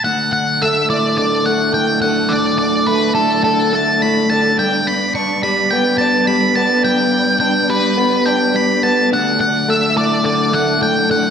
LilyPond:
<<
  \new Staff \with { instrumentName = "Lead electric guitar" } { \time 4/4 \key d \major \tempo 4 = 106 fis''8 fis''8 e''8 d''8 d''8 fis''8 g''8 fis''8 | d''8 d''8 b'8 a'8 a'8 a''8 b''8 a''8 | g''8 b''8 cis'''8 b''8 g''8 a''8 b''8 a''8 | g''4 g''8 b'4 g''8 b''8 a''8 |
fis''8 fis''8 e''8 d''8 d''8 fis''8 g''8 fis''8 | }
  \new Staff \with { instrumentName = "String section" } { \time 4/4 \key d \major << { <d' d''>1~ | <d' d''>1~ | <d' d''>1~ | <d' d''>1~ |
<d' d''>1 | } \\ { <fis a a'>1~ | <fis a a'>1 | <g b b'>1~ | <g b b'>1 |
<fis a a'>1 | } >> }
  \new Staff \with { instrumentName = "Clean electric guitar" } { \clef bass \time 4/4 \key d \major d,4 a8 a,8 d8 a8 a,8 d8 | d,4 a8 a,8 d8 a8 a,8 d8 | g,4 d'8 g8 b8 d'8 g8 b8 | g,4 d'8 g8 b8 d'8 g8 b8 |
d,4 a8 a,8 d8 a8 a,8 d8 | }
>>